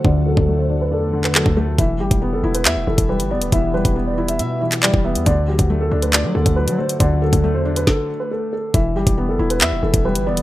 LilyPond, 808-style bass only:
\new Staff \with { instrumentName = "808-style bass" } { \clef bass \time 4/4 \key e \minor \tempo 4 = 138 d,8. d,4~ d,16 e,4~ e,16 d,8. | e,,8 g,,16 e,,8 fis,,16 e,,8 e,16 e,,16 e,,16 e,,8 g,,16. e,,16. | e,,8. e,,4~ e,,16 b,4~ b,16 e,,8 e,16 | d,8. d,8. d,8. fis16 d,16 d,8 fis16 r8 |
d,8. d,8 e,8. r2 | e,,8 g,,16 e,,8 fis,,16 e,,8 e,16 e,,16 e,,16 e,,8 g,,16. e,,16. | }